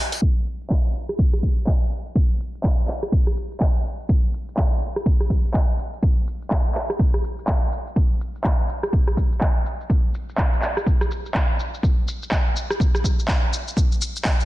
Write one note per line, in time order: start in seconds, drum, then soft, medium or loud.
0.12 snare soft
0.12 closed hi-hat medium
0.12 tambourine medium
0.22 kick loud
0.22 crash medium
0.22 shaker soft
0.47 shaker medium
0.61 shaker soft
0.70 kick loud
0.70 clap loud
0.70 shaker soft
0.95 shaker medium
1.09 cross-stick medium
1.09 shaker soft
1.19 kick loud
1.19 shaker soft
1.33 cross-stick medium
1.33 shaker soft
1.43 kick medium
1.43 shaker medium
1.58 shaker soft
1.67 kick loud
1.67 clap loud
1.67 shaker soft
1.92 shaker medium
2.06 shaker soft
2.15 kick loud
2.15 shaker soft
2.40 shaker medium
2.55 shaker soft
2.63 kick loud
2.63 clap loud
2.63 shaker soft
2.79 shaker soft
2.88 clap medium
2.88 shaker medium
3.03 cross-stick medium
3.03 shaker soft
3.12 kick loud
3.12 shaker soft
3.27 cross-stick medium
3.27 shaker soft
3.37 shaker medium
3.52 shaker soft
3.60 kick loud
3.60 clap loud
3.60 shaker soft
3.85 shaker medium
4.00 shaker soft
4.09 kick loud
4.09 shaker soft
4.34 shaker medium
4.49 shaker soft
4.57 kick loud
4.57 clap loud
4.57 shaker soft
4.82 shaker medium
4.96 cross-stick medium
4.96 shaker soft
5.06 kick loud
5.06 shaker soft
5.20 cross-stick medium
5.20 shaker soft
5.30 kick medium
5.30 shaker medium
5.45 shaker soft
5.54 kick loud
5.54 clap loud
5.54 shaker soft
5.79 shaker medium
5.94 shaker soft
6.03 kick loud
6.03 shaker soft
6.27 shaker medium
6.42 shaker soft
6.51 kick loud
6.51 clap loud
6.51 shaker soft
6.66 shaker soft
6.75 clap medium
6.75 shaker medium
6.90 cross-stick medium
6.90 shaker soft
6.99 kick loud
6.99 shaker soft
7.14 cross-stick medium
7.14 shaker soft
7.24 shaker medium
7.39 shaker soft
7.47 kick loud
7.47 clap loud
7.47 shaker soft
7.72 shaker medium
7.87 shaker soft
7.96 kick loud
7.96 shaker soft
8.21 shaker medium
8.35 shaker soft
8.44 kick loud
8.44 clap loud
8.44 shaker soft
8.69 shaker medium
8.83 cross-stick medium
8.83 shaker soft
8.93 kick loud
8.93 shaker soft
9.07 cross-stick medium
9.07 shaker soft
9.17 kick medium
9.17 shaker medium
9.32 shaker soft
9.41 kick loud
9.41 clap loud
9.41 shaker soft
9.66 shaker medium
9.81 shaker soft
9.90 kick loud
9.90 shaker soft
10.14 shaker medium
10.29 shaker soft
10.38 kick loud
10.38 clap loud
10.38 shaker soft
10.53 shaker soft
10.62 clap medium
10.62 shaker medium
10.77 cross-stick medium
10.77 shaker soft
10.86 kick loud
10.86 shaker soft
11.01 cross-stick medium
11.01 shaker soft
11.11 shaker medium
11.26 shaker soft
11.34 kick loud
11.34 clap loud
11.34 shaker soft
11.60 shaker medium
11.74 shaker soft
11.83 kick loud
11.83 shaker soft
12.08 shaker medium
12.23 shaker soft
12.31 kick loud
12.31 clap loud
12.31 shaker soft
12.56 shaker medium
12.70 cross-stick medium
12.70 shaker soft
12.80 kick loud
12.80 shaker soft
12.95 cross-stick medium
12.95 shaker soft
13.04 kick medium
13.04 shaker medium
13.19 shaker soft
13.28 kick loud
13.28 clap loud
13.28 shaker soft
13.53 shaker medium
13.68 shaker soft
13.77 kick loud
13.77 shaker soft
13.92 shaker soft
14.02 shaker medium
14.16 shaker soft
14.25 kick loud
14.25 clap loud
14.25 shaker soft
14.40 shaker soft